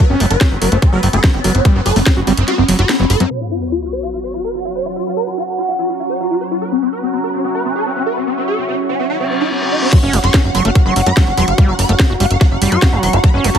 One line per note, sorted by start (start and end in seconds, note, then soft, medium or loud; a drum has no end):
0.00 3.29 F#3 medium
0.00 3.33 B3 medium
0.10 0.16 F#1 medium
0.10 0.16 C#4 medium
0.10 0.22 C#4 medium
0.20 0.26 F#1 loud
0.20 0.26 F#3 loud
0.20 0.26 C#4 medium
0.20 open hi-hat loud
0.31 0.36 F#1 loud
0.31 0.36 B4 loud
0.31 closed hi-hat medium
0.41 0.47 C#4 medium
0.41 0.49 C#4 medium
0.41 kick loud
0.41 snare loud
0.41 closed hi-hat medium
0.51 0.57 F#1 medium
0.51 0.57 C#4 medium
0.61 0.67 F#1 loud
0.61 0.70 F#3 medium
0.61 0.67 B4 loud
0.61 open hi-hat loud
0.72 0.78 F#1 medium
0.72 0.77 A3 medium
0.72 0.78 C#4 medium
0.72 closed hi-hat medium
0.82 0.88 C#4 medium
0.82 kick loud
0.82 closed hi-hat medium
0.93 0.98 F#1 medium
0.93 1.01 F#3 medium
0.93 0.98 B4 loud
1.03 1.09 F#1 loud
1.03 1.08 F#3 medium
1.03 1.09 C#4 medium
1.03 open hi-hat loud
1.13 1.19 F#1 loud
1.13 1.17 A3 medium
1.13 1.19 A4 medium
1.13 closed hi-hat medium
1.24 1.32 F#3 medium
1.24 1.29 C#4 medium
1.24 kick loud
1.24 snare loud
1.24 closed hi-hat medium
1.34 1.40 F#1 medium
1.34 1.40 C#4 medium
1.44 1.50 F#1 loud
1.44 1.53 F#3 medium
1.44 1.50 B4 medium
1.44 open hi-hat loud
1.55 1.60 F#1 medium
1.55 1.60 C#4 medium
1.55 closed hi-hat medium
1.65 1.77 G3 loud
1.65 1.71 C#4 medium
1.65 kick loud
1.65 closed hi-hat medium
1.75 1.81 F#1 medium
1.75 1.81 F#3 medium
1.75 1.81 C#4 medium
1.86 1.92 F#1 loud
1.86 1.92 A4 medium
1.86 open hi-hat loud
1.96 2.02 F#1 loud
1.96 1.99 A3 medium
1.96 2.02 C#4 medium
1.96 open hi-hat medium
2.06 2.12 C#4 medium
2.06 kick loud
2.06 snare loud
2.06 closed hi-hat medium
2.17 2.23 F#1 medium
2.17 2.20 F#4 loud
2.27 2.33 F#1 loud
2.27 2.33 G3 loud
2.27 2.33 C#4 medium
2.27 open hi-hat loud
2.37 2.43 F#1 medium
2.37 2.43 C#4 medium
2.37 closed hi-hat medium
2.48 2.51 F#4 medium
2.48 2.54 F#4 medium
2.48 snare soft
2.48 closed hi-hat medium
2.58 2.64 F#1 medium
2.58 2.64 C#4 medium
2.68 2.74 F#1 loud
2.68 2.77 F#3 loud
2.68 2.74 C#4 medium
2.68 open hi-hat loud
2.79 2.85 F#1 loud
2.79 2.82 F#4 medium
2.79 2.85 F#4 medium
2.79 closed hi-hat medium
2.89 2.95 C#4 medium
2.89 snare loud
2.89 closed hi-hat medium
3.00 3.05 F#1 medium
3.00 3.05 F#3 medium
3.00 3.05 C#4 medium
3.10 3.16 F#1 loud
3.10 3.16 A4 medium
3.10 open hi-hat loud
3.20 3.26 F#2 medium
3.20 3.24 F#3 medium
3.20 3.26 C#4 medium
3.20 closed hi-hat medium
3.31 9.91 F#3 medium
3.31 13.59 C#4 medium
3.31 9.91 F#4 medium
3.31 3.36 C#5 loud
3.31 crash medium
3.31 sub drop medium
3.41 3.47 F#4 medium
3.41 13.59 F#4 medium
3.51 3.57 F#4 medium
3.62 3.67 C#5 medium
3.62 13.59 C#6 medium
3.72 3.78 F#4 medium
3.82 3.88 F#4 medium
3.93 3.98 C#5 medium
4.03 4.09 F#4 medium
4.13 4.19 F#4 medium
4.24 4.29 C#5 medium
4.34 4.40 F#4 medium
4.44 4.50 B4 medium
4.44 7.06 F#5 medium
4.55 4.60 F#4 medium
4.65 4.71 F#4 medium
4.75 4.81 C#5 medium
4.86 4.92 F#4 medium
4.96 5.02 F#4 medium
5.06 5.12 F#4 medium
5.17 5.23 B4 loud
5.27 5.33 F#4 medium
5.37 5.43 F#4 medium
5.58 5.64 F#4 medium
5.68 5.74 F#4 medium
5.79 5.85 F#4 loud
5.89 5.95 F#4 medium
6.00 6.05 F#4 medium
6.10 6.16 C#5 medium
6.20 6.26 F#4 medium
6.31 6.36 F#4 medium
6.41 6.47 C#5 medium
6.51 6.57 F#4 medium
6.62 6.67 B4 loud
6.72 6.78 C#4 medium
6.82 6.88 C#4 medium
6.93 6.98 B4 medium
6.93 10.91 E5 medium
7.03 7.09 C#4 medium
7.13 7.19 C#4 medium
7.24 7.29 B4 loud
7.34 7.40 C#4 medium
7.44 7.50 C#4 medium
7.55 7.61 B4 medium
7.65 7.71 C#4 medium
7.75 7.81 A4 medium
7.86 7.92 C#4 medium
7.96 8.02 C#4 medium
8.06 8.12 B4 medium
8.17 8.23 C#4 medium
8.27 8.33 C#4 medium
8.37 8.43 C#4 medium
8.48 8.54 A4 loud
8.58 8.64 C#4 medium
8.68 8.74 C#4 medium
8.89 8.95 C#4 medium
8.99 9.05 C#4 medium
9.10 9.16 E4 medium
9.10 reverse cymbal medium
9.20 9.26 C#4 medium
9.31 9.36 C#4 medium
9.41 9.47 E4 medium
9.51 9.57 C#4 medium
9.62 9.67 C#4 medium
9.72 9.78 E4 medium
9.82 9.88 C#4 medium
9.93 9.98 F#3 loud
9.93 13.59 F#3 medium
9.93 13.59 F#4 medium
9.93 9.98 C#6 loud
9.93 kick loud
9.93 closed hi-hat medium
9.93 crash loud
9.93 impact medium
10.03 10.09 F#1 medium
10.03 10.15 C#4 medium
10.03 10.09 F#5 medium
10.13 10.19 F#1 loud
10.13 10.19 F#3 loud
10.13 10.19 F#5 medium
10.13 open hi-hat loud
10.24 10.29 F#1 loud
10.24 10.29 C#6 loud
10.24 snare soft
10.24 closed hi-hat medium
10.34 10.42 C#4 medium
10.34 10.40 F#5 medium
10.34 13.59 F#5 medium
10.34 kick loud
10.34 snare loud
10.34 closed hi-hat medium
10.44 10.50 F#1 medium
10.44 10.50 F#5 medium
10.55 10.60 F#1 loud
10.55 10.63 F#3 medium
10.55 10.60 C#6 loud
10.55 open hi-hat loud
10.65 10.71 F#1 medium
10.65 10.71 A3 medium
10.65 10.71 F#5 medium
10.65 closed hi-hat medium
10.75 10.81 F#5 medium
10.75 kick loud
10.75 closed hi-hat medium
10.86 10.92 F#1 medium
10.86 10.94 F#3 medium
10.86 10.92 C#6 medium
10.96 11.02 F#1 loud
10.96 11.02 F#3 medium
10.96 11.02 F#5 medium
10.96 open hi-hat loud
11.06 11.12 F#2 loud
11.06 11.10 A3 medium
11.06 11.12 B5 medium
11.06 closed hi-hat medium
11.17 11.25 F#3 medium
11.17 11.23 F#5 medium
11.17 kick loud
11.17 snare loud
11.17 closed hi-hat medium
11.27 11.33 F#1 medium
11.27 11.33 F#5 medium
11.37 11.43 E1 loud
11.37 11.46 F#3 medium
11.37 11.43 C#6 medium
11.37 open hi-hat loud
11.48 11.54 F#1 medium
11.48 11.54 F#5 medium
11.48 closed hi-hat medium
11.58 11.70 G3 loud
11.58 11.64 F#5 medium
11.58 kick loud
11.58 closed hi-hat medium
11.68 11.74 F#1 medium
11.68 11.74 F#3 medium
11.68 11.74 F#5 medium
11.79 11.85 F#1 loud
11.79 11.85 B5 loud
11.79 open hi-hat loud
11.89 11.95 F#1 loud
11.89 11.92 A3 medium
11.89 11.95 F#5 medium
11.89 closed hi-hat medium
12.00 12.05 F#5 medium
12.00 kick loud
12.00 snare loud
12.00 closed hi-hat medium
12.10 12.16 F#1 medium
12.10 12.13 F#4 loud
12.20 12.26 F#1 loud
12.20 12.26 G3 loud
12.20 12.26 F#5 medium
12.20 open hi-hat loud
12.31 12.36 F#1 medium
12.31 12.36 F#5 medium
12.31 closed hi-hat medium
12.41 12.44 F#4 medium
12.41 12.47 F#5 loud
12.41 kick loud
12.41 snare soft
12.41 closed hi-hat medium
12.51 12.57 F#1 medium
12.51 12.57 F#5 medium
12.62 12.67 F#1 loud
12.62 12.73 G3 loud
12.62 12.67 F#5 medium
12.62 open hi-hat loud
12.72 12.78 F#2 medium
12.72 12.94 F#4 medium
12.72 12.78 C#6 loud
12.72 closed hi-hat medium
12.82 12.88 F#5 medium
12.82 kick loud
12.82 snare loud
12.82 closed hi-hat medium
12.93 12.98 F#1 medium
12.93 13.15 F#3 medium
12.93 12.98 F#5 medium
13.03 13.09 E1 loud
13.03 13.09 C#6 medium
13.03 open hi-hat loud
13.13 13.19 F#1 medium
13.13 13.19 F#4 loud
13.13 13.19 F#5 medium
13.13 closed hi-hat medium
13.24 13.29 F#3 loud
13.24 13.29 B5 loud
13.24 kick loud
13.24 closed hi-hat medium
13.34 13.40 F#1 medium
13.34 13.46 C#4 medium
13.34 13.40 C#5 medium
13.44 13.50 F#1 loud
13.44 13.50 F#3 loud
13.44 13.50 C#5 medium
13.44 open hi-hat loud
13.55 13.59 F#1 loud
13.55 13.59 B5 loud
13.55 snare soft
13.55 closed hi-hat medium